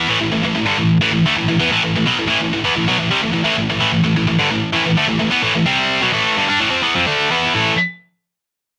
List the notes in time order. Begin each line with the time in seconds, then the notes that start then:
0.09 A2 E3
0.20 A2 E3
0.32 A2 E3
0.43 A2 E3
0.55 A2 E3
0.66 G2 D3
0.78 A2 E3
1.01 A2 E3
1.12 A2 E3
1.26 D3 A3
1.37 A2 E3
1.48 A2 E3
1.60 E3 B3
1.72 A2 E3
1.84 A2 E3
1.96 A2 E3
2.06 B2 F#3
2.19 A2 E3
2.28 A2 E3
2.42 A2 E3
2.53 A2 E3
2.64 E3 B3
2.76 A2 E3
2.88 B2 F#3
2.99 A2 E3
3.11 C3 G3
3.23 A2 E3
3.33 A2 E3
3.44 A2 E3
3.57 A2 E3
3.70 A2 E3
3.80 A2 E3
3.92 A2 E3
4.04 A2 E3
4.16 A2 E3
4.27 A2 E3
4.39 G2 D3
4.51 A2 E3
4.73 A2 E3
4.86 A2 E3
4.97 D3 A3
5.08 A2 E3
5.20 A2 E3
5.31 E3 B3
5.43 A2 E3
5.55 A2 E3
5.66 C3 G3 C4
6.02 B2 F#3
6.13 A2 E3 A3
6.37 G2 D3
6.48 G3 D4
6.60 A2 E3
6.71 F3 C4
6.83 E3 B3
6.95 F3 C4
7.07 D3 A3 D4
7.30 E3 B3 E4
7.54 A2 E3 A3